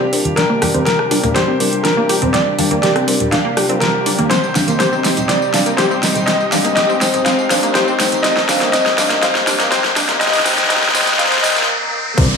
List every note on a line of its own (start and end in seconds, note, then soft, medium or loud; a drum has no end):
0.00 11.65 C3 medium
0.00 4.27 G3 medium
0.00 0.07 C4 loud
0.00 4.27 D4 medium
0.00 0.33 F4 medium
0.00 0.38 G4 medium
0.00 riser medium
0.13 0.33 G3 medium
0.13 0.20 C4 medium
0.13 0.33 D4 medium
0.13 0.33 F4 medium
0.13 0.33 A#4 medium
0.13 0.33 D5 medium
0.13 open hi-hat loud
0.25 closed hi-hat medium
0.25 high conga medium
0.36 0.59 G3 medium
0.36 0.48 D4 loud
0.36 0.59 D4 medium
0.36 0.59 F4 medium
0.36 11.65 G4 medium
0.36 0.84 A#4 loud
0.36 0.59 A#4 medium
0.36 0.59 D5 loud
0.36 snare medium
0.36 closed hi-hat medium
0.50 0.57 A#3 loud
0.62 0.71 G3 loud
0.62 0.71 D4 medium
0.62 0.71 F4 medium
0.62 0.69 G4 loud
0.62 0.71 A#4 medium
0.62 0.71 F5 loud
0.62 cross-stick medium
0.62 open hi-hat loud
0.62 high bongo medium
0.62 high conga medium
0.74 0.84 G3 medium
0.74 0.81 C4 loud
0.74 0.84 D4 medium
0.74 0.84 F4 medium
0.74 0.84 D5 medium
0.74 closed hi-hat medium
0.74 high conga medium
0.85 1.00 G3 medium
0.85 0.94 C4 medium
0.85 1.00 D4 medium
0.85 1.00 F4 medium
0.85 1.37 A#4 medium
0.85 1.00 A#4 medium
0.85 1.00 D5 medium
0.85 snare medium
0.85 closed hi-hat medium
0.99 cross-stick medium
1.11 1.22 G3 medium
1.11 1.22 D4 loud
1.11 1.22 D4 medium
1.11 1.22 F4 medium
1.11 1.22 A#4 medium
1.11 1.22 D5 loud
1.11 open hi-hat loud
1.11 high bongo medium
1.23 1.34 G3 medium
1.23 1.30 A#3 loud
1.23 1.34 D4 medium
1.23 1.34 F4 medium
1.23 1.34 A#4 medium
1.23 1.34 D5 medium
1.23 closed hi-hat medium
1.23 low conga medium
1.34 1.49 G3 medium
1.34 1.49 D4 medium
1.34 1.49 F4 medium
1.34 1.43 G4 loud
1.34 1.49 A#4 medium
1.34 1.81 C5 loud
1.34 1.49 D5 loud
1.34 snare medium
1.34 closed hi-hat medium
1.48 1.55 C4 loud
1.60 1.70 G3 medium
1.60 1.67 C4 medium
1.60 1.70 D4 medium
1.60 1.70 F4 medium
1.60 1.70 A#4 medium
1.60 1.70 D5 loud
1.60 open hi-hat loud
1.73 1.82 G3 medium
1.73 1.82 D4 medium
1.73 1.82 F4 medium
1.73 1.82 A#4 medium
1.73 1.82 G5 medium
1.73 closed hi-hat medium
1.83 1.98 G3 medium
1.83 1.95 D4 loud
1.83 1.98 D4 medium
1.83 1.98 F4 medium
1.83 2.35 A#4 medium
1.83 snare medium
1.83 closed hi-hat medium
1.97 2.04 A#3 loud
2.09 2.30 G3 medium
2.09 2.30 D4 medium
2.09 2.30 F4 medium
2.09 2.17 G4 loud
2.09 2.30 A#4 medium
2.09 2.30 D5 medium
2.09 open hi-hat loud
2.09 high bongo medium
2.22 2.29 C4 loud
2.22 closed hi-hat soft
2.22 high conga medium
2.22 low conga medium
2.33 2.56 G3 medium
2.33 2.41 C4 medium
2.33 2.56 D4 medium
2.33 2.56 F4 medium
2.33 2.56 A#4 medium
2.33 2.80 D5 loud
2.33 2.56 D5 loud
2.33 snare medium
2.33 closed hi-hat medium
2.58 2.68 G3 loud
2.58 2.69 D4 loud
2.58 2.68 D4 medium
2.58 2.68 F4 medium
2.58 2.68 A#4 medium
2.58 2.68 F5 loud
2.58 open hi-hat loud
2.58 high conga medium
2.71 2.80 G3 medium
2.71 2.78 A#3 loud
2.71 2.80 D4 medium
2.71 2.80 F4 medium
2.71 2.80 A#4 medium
2.71 2.80 D5 medium
2.71 closed hi-hat soft
2.71 high conga medium
2.82 2.96 G3 medium
2.82 2.96 D4 medium
2.82 2.96 F4 medium
2.82 2.90 G4 loud
2.82 2.96 A#4 medium
2.82 3.33 D5 medium
2.82 2.96 D5 medium
2.82 snare medium
2.82 closed hi-hat medium
2.96 3.03 C4 loud
2.96 cross-stick medium
2.96 closed hi-hat soft
3.08 3.18 G3 medium
3.08 3.15 C4 medium
3.08 3.19 D4 medium
3.08 3.19 F4 medium
3.08 3.19 A#4 medium
3.08 3.19 D5 loud
3.08 open hi-hat loud
3.20 3.31 G3 medium
3.20 3.31 D4 medium
3.20 3.31 F4 medium
3.20 3.31 A#4 medium
3.20 3.31 D5 medium
3.20 closed hi-hat medium
3.20 low conga loud
3.31 3.46 G3 medium
3.31 3.43 D4 loud
3.31 3.46 D4 medium
3.31 3.46 F4 medium
3.31 3.46 D5 loud
3.31 3.77 F5 loud
3.31 snare medium
3.31 closed hi-hat medium
3.45 3.52 A#3 loud
3.57 3.68 G3 medium
3.57 3.68 D4 medium
3.57 3.68 F4 medium
3.57 3.64 G4 loud
3.57 3.68 A#4 medium
3.57 3.68 D5 loud
3.57 cross-stick medium
3.57 open hi-hat loud
3.69 3.80 G3 loud
3.69 3.76 C4 loud
3.69 3.80 D4 medium
3.69 3.80 F4 medium
3.69 3.80 A#4 medium
3.69 3.80 D5 loud
3.69 closed hi-hat medium
3.80 4.03 G3 medium
3.80 3.89 C4 medium
3.80 4.03 D4 medium
3.80 4.03 F4 medium
3.80 4.32 A#4 medium
3.80 4.03 A#4 medium
3.80 4.03 F5 loud
3.80 snare medium
3.80 closed hi-hat medium
4.06 4.19 G3 medium
4.06 4.17 D4 loud
4.06 4.19 D4 medium
4.06 4.19 F4 medium
4.06 4.19 A#4 medium
4.06 4.19 D5 medium
4.06 open hi-hat loud
4.19 4.25 A#3 loud
4.19 closed hi-hat soft
4.19 high conga loud
4.29 4.53 G3 medium
4.29 4.38 C4 medium
4.29 4.53 C4 medium
4.29 11.65 C4 medium
4.29 11.65 D#4 medium
4.29 4.53 D#4 medium
4.29 4.77 C5 loud
4.29 4.53 D#5 medium
4.29 snare medium
4.29 closed hi-hat medium
4.29 tambourine soft
4.44 tambourine soft
4.55 4.65 G3 medium
4.55 4.65 C4 medium
4.55 4.66 D4 medium
4.55 4.65 D#4 medium
4.55 4.65 C5 medium
4.55 4.65 F5 loud
4.55 snare medium
4.55 open hi-hat loud
4.55 tambourine medium
4.55 high bongo medium
4.55 high conga medium
4.68 4.77 G3 medium
4.68 4.75 A#3 medium
4.68 4.77 C4 medium
4.68 4.77 D#4 medium
4.68 4.77 C5 medium
4.68 4.77 D#5 medium
4.68 closed hi-hat soft
4.68 tambourine soft
4.68 high conga medium
4.79 4.93 G3 medium
4.79 4.93 C4 medium
4.79 4.93 D#4 medium
4.79 4.87 G4 loud
4.79 5.30 C5 medium
4.79 4.93 C5 medium
4.79 4.93 D#5 medium
4.79 snare medium
4.79 closed hi-hat medium
4.79 tambourine soft
4.92 4.99 C4 medium
4.92 tambourine soft
5.04 5.15 G3 medium
5.04 5.12 C4 medium
5.04 5.15 C4 medium
5.04 5.15 D#4 medium
5.04 5.15 C5 medium
5.04 5.15 D#5 medium
5.04 snare medium
5.04 open hi-hat loud
5.04 tambourine medium
5.04 high bongo medium
5.17 5.27 G3 medium
5.17 5.27 C4 medium
5.17 5.27 D#4 medium
5.17 5.27 C5 medium
5.17 5.27 D#5 medium
5.17 closed hi-hat medium
5.17 tambourine soft
5.17 low conga medium
5.28 5.51 G3 medium
5.28 5.36 C4 medium
5.28 5.51 C4 medium
5.28 5.51 D#4 medium
5.28 5.51 C5 medium
5.28 5.79 D5 loud
5.28 5.51 D#5 medium
5.28 snare medium
5.28 closed hi-hat medium
5.28 tambourine soft
5.42 tambourine soft
5.54 5.63 G3 medium
5.54 5.63 C4 medium
5.54 5.64 D4 loud
5.54 5.63 D#4 medium
5.54 5.63 C5 medium
5.54 5.63 F5 loud
5.54 snare medium
5.54 open hi-hat loud
5.54 tambourine medium
5.66 5.76 G3 medium
5.66 5.73 A#3 loud
5.66 5.76 C4 medium
5.66 5.76 D#4 medium
5.66 5.76 C5 medium
5.66 5.76 D#5 medium
5.66 closed hi-hat medium
5.66 tambourine soft
5.77 5.91 G3 medium
5.77 5.91 C4 medium
5.77 5.91 D#4 medium
5.77 5.85 G4 medium
5.77 6.28 C5 loud
5.77 5.91 C5 medium
5.77 5.91 D#5 medium
5.77 snare medium
5.77 closed hi-hat medium
5.77 tambourine soft
5.91 5.98 C4 medium
5.91 tambourine soft
6.03 6.14 G3 medium
6.03 6.10 C4 medium
6.03 6.14 C4 medium
6.03 6.14 D#4 medium
6.03 6.14 C5 medium
6.03 6.14 D#5 medium
6.03 snare medium
6.03 open hi-hat loud
6.03 tambourine medium
6.03 high bongo medium
6.15 6.26 G3 medium
6.15 6.26 C4 medium
6.15 6.26 D#4 medium
6.15 6.26 C5 medium
6.15 6.26 D#5 medium
6.15 closed hi-hat soft
6.15 tambourine soft
6.15 high conga medium
6.15 low conga medium
6.26 6.49 G3 medium
6.26 6.35 C4 medium
6.26 6.49 C4 medium
6.26 6.49 D#4 medium
6.26 6.49 C5 medium
6.26 6.74 D#5 loud
6.26 6.49 D#5 medium
6.26 snare medium
6.26 closed hi-hat medium
6.26 tambourine soft
6.40 tambourine soft
6.52 6.62 G3 loud
6.52 6.62 C4 medium
6.52 6.63 D4 loud
6.52 6.62 D#4 medium
6.52 6.62 C5 medium
6.52 6.62 F5 loud
6.52 snare medium
6.52 open hi-hat loud
6.52 tambourine medium
6.52 high conga medium
6.65 6.74 G3 medium
6.65 6.71 A#3 loud
6.65 6.74 C4 medium
6.65 6.74 D#4 medium
6.65 6.74 C5 medium
6.65 6.74 D#5 medium
6.65 closed hi-hat medium
6.65 tambourine soft
6.65 high conga medium
6.75 6.90 G3 medium
6.75 6.90 C4 medium
6.75 6.90 D#4 medium
6.75 6.84 G4 loud
6.75 6.90 C5 medium
6.75 7.22 D#5 loud
6.75 6.90 D#5 medium
6.75 snare medium
6.75 closed hi-hat medium
6.75 tambourine soft
6.89 6.96 C4 loud
6.89 tambourine soft
7.01 7.12 G3 medium
7.01 7.08 C4 medium
7.01 7.12 C4 medium
7.01 7.12 D#4 medium
7.01 7.12 C5 medium
7.01 7.12 D#5 medium
7.01 snare medium
7.01 open hi-hat loud
7.01 tambourine medium
7.14 7.24 G3 medium
7.14 7.24 C4 medium
7.14 7.24 D#4 medium
7.14 7.24 C5 medium
7.14 7.24 D#5 medium
7.14 closed hi-hat medium
7.14 tambourine soft
7.14 low conga medium
7.24 7.48 G3 medium
7.24 7.33 C4 medium
7.24 7.48 C4 medium
7.24 7.48 D#4 medium
7.24 7.48 C5 medium
7.24 7.48 D#5 loud
7.24 7.76 F5 loud
7.24 snare medium
7.24 closed hi-hat medium
7.24 tambourine soft
7.39 tambourine soft
7.50 7.60 G3 loud
7.50 7.60 C4 medium
7.50 7.61 D4 loud
7.50 7.60 D#4 medium
7.50 7.60 C5 medium
7.50 7.60 F5 loud
7.50 snare medium
7.50 open hi-hat loud
7.50 tambourine medium
7.63 7.72 G3 medium
7.63 7.70 A#3 loud
7.63 7.72 C4 medium
7.63 7.72 D#4 medium
7.63 7.72 C5 medium
7.63 7.72 D#5 medium
7.63 closed hi-hat medium
7.63 tambourine soft
7.73 7.88 G3 medium
7.73 7.88 C4 medium
7.73 7.88 D#4 medium
7.73 7.82 G4 loud
7.73 8.25 C5 loud
7.73 7.88 C5 medium
7.73 7.88 D#5 medium
7.73 snare medium
7.73 closed hi-hat medium
7.73 tambourine soft
7.87 7.94 C4 loud
7.87 tambourine soft
8.00 8.10 G3 medium
8.00 8.07 C4 medium
8.00 8.10 C4 medium
8.00 8.10 D#4 medium
8.00 8.10 C5 medium
8.00 8.10 D#5 medium
8.00 snare medium
8.00 open hi-hat loud
8.00 tambourine medium
8.12 8.22 G3 medium
8.12 8.22 C4 medium
8.12 8.22 D#4 medium
8.12 8.22 C5 medium
8.12 8.22 D#5 medium
8.12 closed hi-hat medium
8.12 tambourine soft
8.12 high conga medium
8.23 8.46 G3 medium
8.23 8.31 C4 medium
8.23 8.46 C4 medium
8.23 8.46 D#4 medium
8.23 8.46 C5 medium
8.23 8.70 D#5 loud
8.23 8.46 D#5 medium
8.23 snare medium
8.23 closed hi-hat medium
8.23 tambourine soft
8.37 snare medium
8.37 tambourine soft
8.48 8.58 G3 loud
8.48 8.58 C4 medium
8.48 8.59 D4 loud
8.48 8.58 D#4 medium
8.48 8.58 C5 medium
8.48 8.58 F5 loud
8.48 snare loud
8.48 open hi-hat loud
8.48 tambourine medium
8.48 high bongo medium
8.48 high conga medium
8.60 8.71 G3 medium
8.60 8.68 A#3 loud
8.60 8.71 C4 medium
8.60 8.71 D#4 medium
8.60 8.71 C5 medium
8.60 8.71 D#5 medium
8.60 snare medium
8.60 closed hi-hat medium
8.60 tambourine soft
8.60 high conga loud
8.72 8.95 G3 medium
8.72 8.80 C4 medium
8.72 8.95 C4 medium
8.72 8.95 D#4 medium
8.72 8.95 C5 medium
8.72 9.23 D#5 loud
8.72 8.95 D#5 loud
8.72 snare medium
8.72 closed hi-hat medium
8.72 tambourine soft
8.86 snare medium
8.86 tambourine soft
8.98 9.08 G3 loud
8.98 9.08 C4 medium
8.98 9.09 D4 loud
8.98 9.08 D#4 medium
8.98 9.08 C5 medium
8.98 9.08 F5 loud
8.98 snare loud
8.98 open hi-hat loud
8.98 tambourine medium
8.98 high bongo medium
9.10 9.20 G3 medium
9.10 9.17 A#3 loud
9.10 9.20 C4 medium
9.10 9.20 D#4 medium
9.10 9.20 C5 medium
9.10 9.20 D#5 medium
9.10 snare medium
9.10 closed hi-hat medium
9.10 tambourine soft
9.10 low conga medium
9.21 9.44 G3 medium
9.21 9.30 C4 medium
9.21 9.44 C4 medium
9.21 9.44 D#4 medium
9.21 9.44 C5 medium
9.21 9.44 D#5 loud
9.21 9.73 F5 loud
9.21 snare loud
9.21 closed hi-hat medium
9.21 tambourine soft
9.35 snare medium
9.35 tambourine soft
9.47 9.57 G3 loud
9.47 9.57 C4 medium
9.47 9.58 D4 loud
9.47 9.57 D#4 medium
9.47 9.57 C5 medium
9.47 9.57 F5 loud
9.47 snare loud
9.47 open hi-hat loud
9.47 tambourine medium
9.59 9.69 G3 medium
9.59 9.66 A#3 loud
9.59 9.69 C4 medium
9.59 9.69 D#4 medium
9.59 9.69 C5 medium
9.59 9.69 D#5 medium
9.59 snare medium
9.59 closed hi-hat medium
9.59 tambourine soft
9.70 9.93 G3 medium
9.70 9.79 C4 medium
9.70 9.93 C4 medium
9.70 9.93 D#4 medium
9.70 10.22 C5 loud
9.70 9.93 C5 medium
9.70 9.93 D#5 loud
9.70 snare loud
9.70 closed hi-hat medium
9.70 tambourine soft
9.84 snare medium
9.84 tambourine soft
9.96 10.06 G3 loud
9.96 10.06 C4 medium
9.96 10.07 D4 loud
9.96 10.06 D#4 medium
9.96 10.06 C5 medium
9.96 10.06 F5 loud
9.96 snare loud
9.96 open hi-hat loud
9.96 tambourine medium
9.96 high bongo medium
10.09 10.18 G3 medium
10.09 10.16 A#3 loud
10.09 10.18 C4 medium
10.09 10.18 D#4 medium
10.09 10.18 C5 medium
10.09 10.18 D#5 medium
10.09 snare medium
10.09 closed hi-hat medium
10.09 tambourine soft
10.09 high conga loud
10.09 low conga medium
10.19 10.43 G3 medium
10.19 10.28 C4 medium
10.19 10.43 C4 medium
10.19 10.43 D#4 medium
10.19 10.43 C5 medium
10.19 10.67 D#5 loud
10.19 10.43 D#5 loud
10.19 snare loud
10.19 closed hi-hat medium
10.19 tambourine soft
10.27 snare medium
10.33 snare medium
10.33 open hi-hat medium
10.33 tambourine soft
10.39 snare medium
10.45 10.67 G3 medium
10.45 10.53 C4 medium
10.45 10.67 C4 medium
10.45 10.67 D#4 medium
10.45 10.67 C5 medium
10.45 10.67 D#5 loud
10.45 snare loud
10.45 open hi-hat loud
10.45 tambourine medium
10.45 high bongo medium
10.45 high conga medium
10.52 snare medium
10.58 snare medium
10.58 closed hi-hat medium
10.58 tambourine soft
10.58 high conga loud
10.64 snare medium
10.68 10.92 G3 medium
10.68 10.77 C4 medium
10.68 10.92 C4 medium
10.68 10.92 D#4 medium
10.68 10.92 C5 medium
10.68 11.20 D#5 loud
10.68 10.92 D#5 loud
10.68 snare loud
10.68 closed hi-hat medium
10.68 tambourine soft
10.76 snare medium
10.83 snare medium
10.83 tambourine soft
10.89 snare medium
10.95 11.16 G3 medium
10.95 11.02 C4 medium
10.95 11.16 C4 medium
10.95 11.16 D#4 medium
10.95 11.16 C5 medium
10.95 11.16 D#5 loud
10.95 snare loud
10.95 open hi-hat loud
10.95 tambourine medium
10.95 high bongo medium
11.01 snare medium
11.06 snare loud
11.06 closed hi-hat medium
11.06 tambourine soft
11.06 low conga medium
11.13 snare medium
11.18 11.41 G3 medium
11.18 11.26 C4 medium
11.18 11.41 C4 medium
11.18 11.41 D#4 medium
11.18 11.41 C5 medium
11.18 11.41 D#5 loud
11.18 11.69 F5 loud
11.18 snare loud
11.18 closed hi-hat medium
11.18 tambourine soft
11.18 swell medium
11.26 snare loud
11.32 snare medium
11.32 closed hi-hat soft
11.32 tambourine soft
11.38 snare medium
11.42 11.66 G3 medium
11.42 11.51 C4 medium
11.42 11.66 C4 medium
11.42 11.66 D#4 medium
11.42 11.66 C5 medium
11.42 11.68 D#5 loud
11.42 11.66 D#5 loud
11.42 snare loud
11.42 open hi-hat loud
11.42 tambourine medium
11.42 high conga medium
11.50 snare loud
11.56 snare loud
11.56 closed hi-hat medium
11.56 tambourine soft
11.62 snare loud
12.17 12.28 C2 loud
12.17 12.37 C3 medium
12.17 12.37 D3 medium
12.17 12.37 G3 medium
12.17 12.25 C4 medium
12.17 12.37 D4 medium
12.17 12.37 F4 medium
12.17 12.37 A#4 medium
12.17 12.25 C5 medium
12.17 12.37 D5 loud
12.17 kick loud
12.17 closed hi-hat medium
12.17 ride medium
12.17 tambourine soft
12.17 crash loud
12.17 downlifter medium
12.30 ride soft
12.30 tambourine soft